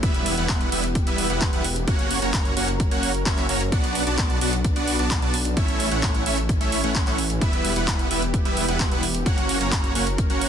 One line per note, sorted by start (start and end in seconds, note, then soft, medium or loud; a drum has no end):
0.00 0.35 E1 loud
0.00 1.84 E3 medium
0.00 0.35 G3 loud
0.00 1.86 B3 medium
0.00 0.35 B3 medium
0.00 0.35 E4 medium
0.00 1.86 G4 medium
0.00 0.35 B4 medium
0.00 0.35 E5 loud
0.00 kick loud
0.00 closed hi-hat medium
0.14 closed hi-hat soft
0.26 open hi-hat loud
0.38 0.70 E1 medium
0.38 0.69 G3 medium
0.38 0.69 B3 medium
0.38 0.69 E4 medium
0.38 0.69 B4 medium
0.38 0.69 F#5 loud
0.38 closed hi-hat soft
0.49 kick loud
0.49 clap loud
0.49 closed hi-hat medium
0.61 closed hi-hat soft
0.72 1.05 E1 loud
0.72 0.84 G3 medium
0.72 0.84 B3 medium
0.72 0.84 E4 medium
0.72 0.84 B4 medium
0.72 0.84 E5 medium
0.72 open hi-hat loud
0.84 closed hi-hat soft
0.95 kick loud
0.95 closed hi-hat medium
1.07 1.28 E1 loud
1.07 1.27 G3 medium
1.07 1.27 B3 medium
1.07 1.27 E4 medium
1.07 1.27 B4 medium
1.07 1.27 E5 medium
1.07 closed hi-hat soft
1.18 open hi-hat loud
1.30 1.51 E1 loud
1.30 1.50 G3 medium
1.30 1.50 B3 medium
1.30 1.50 E4 medium
1.30 1.50 B4 medium
1.30 1.50 F#5 medium
1.30 closed hi-hat soft
1.41 kick loud
1.41 clap loud
1.41 closed hi-hat medium
1.53 1.85 E1 loud
1.53 1.65 G3 loud
1.53 1.65 B3 medium
1.53 1.65 E4 medium
1.53 1.65 B4 medium
1.53 1.65 F#5 loud
1.53 closed hi-hat soft
1.64 open hi-hat loud
1.76 closed hi-hat soft
1.88 2.20 F#1 loud
1.88 5.53 F#3 medium
1.88 2.19 A#3 loud
1.88 2.19 C#4 medium
1.88 3.70 C#4 medium
1.88 2.19 F#4 medium
1.88 3.70 A#4 medium
1.88 2.19 C#5 medium
1.88 2.19 F#5 loud
1.88 kick loud
1.88 closed hi-hat medium
1.99 closed hi-hat soft
2.11 open hi-hat loud
2.22 2.55 F#1 medium
2.22 2.54 A#3 medium
2.22 2.54 C#4 medium
2.22 2.54 F#4 medium
2.22 2.54 C#5 medium
2.22 2.54 A#5 loud
2.22 closed hi-hat soft
2.34 kick loud
2.34 clap loud
2.34 closed hi-hat medium
2.45 closed hi-hat soft
2.57 2.89 F#1 loud
2.57 2.69 A#3 medium
2.57 2.69 C#4 medium
2.57 2.69 F#4 medium
2.57 2.69 C#5 medium
2.57 2.69 F#5 medium
2.57 open hi-hat loud
2.68 closed hi-hat soft
2.80 kick loud
2.80 closed hi-hat medium
2.91 3.24 F#1 medium
2.91 3.12 A#3 medium
2.91 3.12 C#4 medium
2.91 3.12 F#4 medium
2.91 3.12 C#5 medium
2.91 3.12 F#5 loud
2.91 closed hi-hat soft
3.03 open hi-hat loud
3.15 closed hi-hat soft
3.26 3.47 F#1 medium
3.26 3.46 A#3 loud
3.26 3.46 C#4 medium
3.26 3.46 F#4 medium
3.26 3.46 C#5 medium
3.26 3.46 E5 loud
3.26 kick loud
3.26 clap loud
3.26 closed hi-hat medium
3.38 clap soft
3.38 closed hi-hat soft
3.49 3.70 F#1 loud
3.49 3.61 A#3 medium
3.49 3.61 C#4 medium
3.49 3.61 F#4 medium
3.49 3.61 C#5 medium
3.49 3.61 A#5 medium
3.49 open hi-hat loud
3.61 closed hi-hat soft
3.72 4.05 B1 loud
3.72 5.55 B3 medium
3.72 4.04 B3 loud
3.72 4.04 D4 medium
3.72 5.55 D4 medium
3.72 4.04 F#4 medium
3.72 4.04 D5 medium
3.72 4.04 F#5 loud
3.72 kick loud
3.72 closed hi-hat medium
3.84 closed hi-hat soft
3.95 open hi-hat loud
4.07 4.39 B1 medium
4.07 4.39 B3 medium
4.07 4.39 D4 medium
4.07 4.39 F#4 medium
4.07 4.39 D5 medium
4.07 4.39 A5 medium
4.07 closed hi-hat soft
4.18 kick loud
4.18 clap loud
4.18 closed hi-hat medium
4.30 closed hi-hat soft
4.41 4.74 B1 loud
4.41 4.54 B3 medium
4.41 4.54 D4 medium
4.41 4.54 F#4 medium
4.41 4.54 D5 medium
4.41 4.54 F#5 medium
4.41 open hi-hat loud
4.53 closed hi-hat soft
4.64 kick loud
4.64 closed hi-hat medium
4.76 4.97 B1 loud
4.76 4.96 B3 medium
4.76 4.96 D4 medium
4.76 4.96 F#4 medium
4.76 4.96 D5 medium
4.76 4.96 F#5 loud
4.76 closed hi-hat soft
4.88 open hi-hat loud
4.99 5.20 B1 loud
4.99 5.19 B3 medium
4.99 5.19 D4 medium
4.99 5.19 F#4 medium
4.99 5.19 D5 medium
4.99 5.19 A5 medium
4.99 closed hi-hat soft
5.11 kick loud
5.11 clap loud
5.11 closed hi-hat medium
5.22 5.55 B1 loud
5.22 5.34 B3 loud
5.22 5.34 D4 medium
5.22 5.34 F#4 medium
5.22 5.34 D5 medium
5.22 5.34 A5 loud
5.22 closed hi-hat soft
5.34 open hi-hat loud
5.45 closed hi-hat soft
5.57 5.89 A1 loud
5.57 9.22 E3 medium
5.57 5.89 A3 loud
5.57 7.40 A3 medium
5.57 5.89 C#4 medium
5.57 7.40 C#4 medium
5.57 5.89 E4 medium
5.57 5.89 C#5 medium
5.57 5.89 E5 loud
5.57 kick loud
5.57 closed hi-hat medium
5.68 closed hi-hat soft
5.80 open hi-hat loud
5.91 6.24 A1 loud
5.91 6.23 A3 medium
5.91 6.23 C#4 medium
5.91 6.23 E4 medium
5.91 6.23 C#5 medium
5.91 6.23 F#5 loud
5.91 closed hi-hat soft
6.03 kick loud
6.03 clap loud
6.03 closed hi-hat medium
6.15 closed hi-hat soft
6.26 6.58 A1 loud
6.26 6.38 A3 medium
6.26 6.38 C#4 medium
6.26 6.38 E4 medium
6.26 6.38 C#5 medium
6.26 6.38 E5 medium
6.26 open hi-hat loud
6.38 closed hi-hat soft
6.49 kick loud
6.49 closed hi-hat medium
6.61 6.82 A1 medium
6.61 6.81 A3 medium
6.61 6.81 C#4 medium
6.61 6.81 E4 medium
6.61 6.81 C#5 medium
6.61 6.81 E5 loud
6.61 closed hi-hat soft
6.72 open hi-hat loud
6.84 7.05 A1 loud
6.84 7.04 A3 medium
6.84 7.04 C#4 medium
6.84 7.04 E4 medium
6.84 7.04 C#5 medium
6.84 7.04 F#5 medium
6.84 closed hi-hat soft
6.95 kick loud
6.95 clap loud
6.95 closed hi-hat medium
7.07 7.39 A1 loud
7.07 7.19 A3 loud
7.07 7.19 C#4 medium
7.07 7.19 E4 medium
7.07 7.19 C#5 medium
7.07 7.19 F#5 loud
7.07 clap soft
7.07 closed hi-hat soft
7.18 open hi-hat loud
7.30 closed hi-hat soft
7.41 7.74 E1 loud
7.41 7.73 G3 loud
7.41 7.73 B3 medium
7.41 9.24 B3 medium
7.41 7.73 E4 medium
7.41 9.24 G4 loud
7.41 7.73 B4 medium
7.41 7.73 E5 loud
7.41 kick loud
7.41 closed hi-hat medium
7.53 closed hi-hat soft
7.65 open hi-hat loud
7.76 8.08 E1 medium
7.76 8.08 G3 medium
7.76 8.08 B3 medium
7.76 8.08 E4 medium
7.76 8.08 B4 medium
7.76 8.08 F#5 medium
7.76 closed hi-hat soft
7.88 kick loud
7.88 clap loud
7.88 closed hi-hat medium
7.99 closed hi-hat soft
8.11 8.43 E1 loud
8.11 8.23 G3 medium
8.11 8.23 B3 medium
8.11 8.23 E4 medium
8.11 8.23 B4 medium
8.11 8.23 E5 medium
8.11 open hi-hat loud
8.22 closed hi-hat soft
8.34 kick loud
8.34 closed hi-hat medium
8.45 8.66 E1 loud
8.45 8.66 G3 medium
8.45 8.66 B3 medium
8.45 8.66 E4 medium
8.45 8.66 B4 medium
8.45 8.66 E5 loud
8.45 closed hi-hat soft
8.57 open hi-hat loud
8.68 8.89 E1 loud
8.68 8.89 G3 medium
8.68 8.89 B3 medium
8.68 8.89 E4 medium
8.68 8.89 B4 medium
8.68 8.89 F#5 medium
8.68 closed hi-hat soft
8.80 kick loud
8.80 clap loud
8.80 closed hi-hat medium
8.91 9.24 E1 loud
8.91 9.04 G3 loud
8.91 9.04 B3 medium
8.91 9.04 E4 medium
8.91 9.04 B4 medium
8.91 9.04 F#5 loud
8.91 closed hi-hat soft
9.03 open hi-hat loud
9.15 closed hi-hat soft
9.26 9.58 F#1 loud
9.26 10.49 F#3 medium
9.26 9.58 A#3 medium
9.26 10.49 C#4 medium
9.26 9.58 C#4 medium
9.26 9.58 F#4 medium
9.26 10.49 A#4 medium
9.26 9.58 C#5 medium
9.26 9.58 F#5 loud
9.26 kick loud
9.26 closed hi-hat medium
9.38 closed hi-hat soft
9.49 open hi-hat loud
9.61 9.93 F#1 medium
9.61 9.93 A#3 medium
9.61 9.93 C#4 medium
9.61 9.93 F#4 medium
9.61 9.93 C#5 medium
9.61 9.93 A#5 medium
9.61 closed hi-hat soft
9.72 kick loud
9.72 clap loud
9.72 closed hi-hat medium
9.84 closed hi-hat soft
9.95 10.28 F#1 loud
9.95 10.07 A#3 medium
9.95 10.07 C#4 medium
9.95 10.07 F#4 medium
9.95 10.07 C#5 medium
9.95 10.07 F#5 medium
9.95 open hi-hat loud
10.07 closed hi-hat soft
10.18 kick loud
10.18 closed hi-hat medium
10.30 10.49 F#1 medium
10.30 10.49 A#3 medium
10.30 10.49 C#4 medium
10.30 10.49 F#4 medium
10.30 10.49 C#5 medium
10.30 10.49 F#5 loud
10.30 closed hi-hat soft
10.41 open hi-hat loud